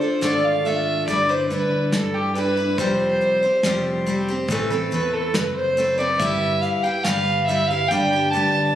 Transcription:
Already playing: fiddle C5
0.01 steel-string acoustic guitar D4 F4 A4
0.21 fingered electric bass G#1, steel-string acoustic guitar D3 A3 D4 F4 A4, fiddle D5, snare, closed hi-hat
0.45 fiddle F5
0.65 steel-string acoustic guitar A3 D4 F4 A4, fiddle E5, closed hi-hat
1.07 fingered electric bass G1, steel-string acoustic guitar G3 D4 E4 B4, fiddle D5, kick, closed hi-hat
1.29 steel-string acoustic guitar D4 E4 B4, fiddle C5
1.49 fingered electric bass D2, steel-string acoustic guitar G3 D4 E4, fiddle B4, closed hi-hat
1.53 steel-string acoustic guitar B4
1.92 fingered electric bass G2, fiddle A4, snare, closed hi-hat
2.14 fiddle G4
2.35 steel-string acoustic guitar G3 D4 E4 B4, fiddle B4, closed hi-hat
2.57 steel-string acoustic guitar D4 E4 B4
2.78 fingered electric bass F1, steel-string acoustic guitar F3 G3 C4 G4 C5, fiddle C5, kick, closed hi-hat
3.21 closed hi-hat
3.43 steel-string acoustic guitar C4 G4 C5
3.63 fingered electric bass F1, steel-string acoustic guitar F3 G3 C4 G4 C5, snare, closed hi-hat
4.06 steel-string acoustic guitar G3 C4 G4 C5, closed hi-hat
4.29 steel-string acoustic guitar C4 G4 C5
4.48 fingered electric bass A1, steel-string acoustic guitar A2 E3 A3 C4 A4, kick, closed hi-hat
4.52 steel-string acoustic guitar B4
4.70 steel-string acoustic guitar A3 C4 A4 B4
4.91 fingered electric bass E2, steel-string acoustic guitar A3 C4 A4 B4, fiddle B4, closed hi-hat
5.14 fiddle A4
5.34 fingered electric bass F#1, fiddle B4, snare, closed hi-hat
5.56 fiddle C5
5.77 steel-string acoustic guitar A3 C4 A4 B4, closed hi-hat
5.98 steel-string acoustic guitar A3 C4 A4 B4, fiddle D5
6.19 fingered electric bass G1, steel-string acoustic guitar G3 E4 G4 B4, fiddle E5, kick, closed hi-hat
6.61 fiddle F5, closed hi-hat
6.83 steel-string acoustic guitar E4 G4 B4, fiddle G5
7.04 fingered electric bass G1, steel-string acoustic guitar G3 G4, fiddle F5, snare, closed hi-hat
7.08 steel-string acoustic guitar B4
7.47 steel-string acoustic guitar G3 E4, fiddle E5, closed hi-hat
7.51 steel-string acoustic guitar G4 B4
7.67 steel-string acoustic guitar B4, fiddle F5
7.72 steel-string acoustic guitar E4 G4
7.88 fingered electric bass G1, steel-string acoustic guitar G3 D4 G4, fiddle G5, kick, closed hi-hat
7.93 steel-string acoustic guitar B4
8.13 steel-string acoustic guitar D4 G4 B4
8.31 fingered electric bass D2, steel-string acoustic guitar G3 D4, fiddle A5, closed hi-hat
8.35 steel-string acoustic guitar G4 B4

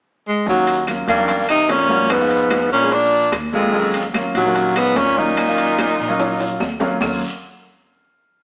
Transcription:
0.28 tenor saxophone G#3
0.46 upright bass D#2, baritone saxophone D#2, grand piano F#3 A#3 C#4 F4, tenor saxophone F#3, high bongo, high conga, long guiro, maracas
0.67 high conga, high timbale
0.87 grand piano F#3 A#3 C#4 F4, high bongo, high conga, high timbale, short guiro, claves, maracas
1.08 upright bass E2, baritone saxophone G2, tenor saxophone A#3, high conga, high timbale, short guiro, maracas
1.17 grand piano F#3 A#3 C#4 D#4
1.28 high bongo, high conga, high timbale, long guiro, maracas
1.49 baritone saxophone C3, tenor saxophone D#4, high conga, high timbale, claves
1.69 upright bass F2, baritone saxophone A#2, tenor saxophone C#4, high bongo, low bongo, high conga, high timbale, low timbale, short guiro, maracas
1.88 grand piano G3 A#3 C#4 F#4, high conga, short guiro, maracas
2.10 baritone saxophone G#2, tenor saxophone B3, high bongo, high timbale, long guiro, claves, maracas
2.19 grand piano G#3 B3 D#4 F4
2.30 high conga, high timbale, maracas
2.50 high bongo, high conga, high timbale, short guiro, claves, maracas
2.71 upright bass A#1, baritone saxophone A#2, tenor saxophone C#4, high bongo, high conga, short guiro, maracas
2.81 grand piano G#3 B3 D#4 G#4
2.91 baritone saxophone A#2, tenor saxophone D4, high bongo, high conga, high timbale, long guiro, maracas
3.12 high bongo, high conga, maracas
3.32 upright bass D#2, high bongo, low bongo, high conga, high timbale, short guiro, claves, maracas
3.52 baritone saxophone F2, grand piano G#3 A#3 D4 F4, tenor saxophone G#3, high bongo, high conga, short guiro, maracas
3.72 grand piano F#3 A#3 C#4 F4, high bongo, long guiro, maracas
3.94 high conga, high timbale, maracas
4.14 grand piano F#3 A#3 C#4 F4, high bongo, high conga, high timbale, short guiro, claves, maracas
4.34 upright bass A#1, baritone saxophone D#2, tenor saxophone F#3, high conga, high timbale, short guiro, maracas
4.45 grand piano F#3 A#3 C#4 F4
4.55 high bongo, high timbale, long guiro, maracas
4.76 baritone saxophone G#2, tenor saxophone B3, high conga, high timbale, claves, maracas
4.96 upright bass D#2, baritone saxophone A#2, tenor saxophone C#4, high bongo, low bongo, high conga, high timbale, low timbale, short guiro, maracas
5.17 baritone saxophone A#2, grand piano F#3 A#3 C#4 F4, tenor saxophone D#4, high conga, short guiro, maracas
5.37 high bongo, high conga, high timbale, long guiro, claves, maracas
5.47 grand piano F#3 A#3 C#4 F4
5.58 high conga, high timbale, maracas
5.78 high bongo, high conga, high timbale, short guiro, claves, maracas
5.99 upright bass A#1, high bongo, short guiro, maracas
6.08 grand piano F#3 A#3 C#4 F4
6.19 high bongo, high conga, high timbale, long guiro, maracas
6.40 high bongo, high conga, high timbale, maracas
6.60 upright bass D#2, high bongo, high conga, low timbale, short guiro, claves, maracas
6.80 grand piano F#3 A#3 C#4 F4, low bongo, high conga, low timbale, short guiro, maracas
7.01 upright bass D#2, grand piano F#3 A#3 C#4 F4, low bongo, low conga, low timbale, long guiro, claves, maracas

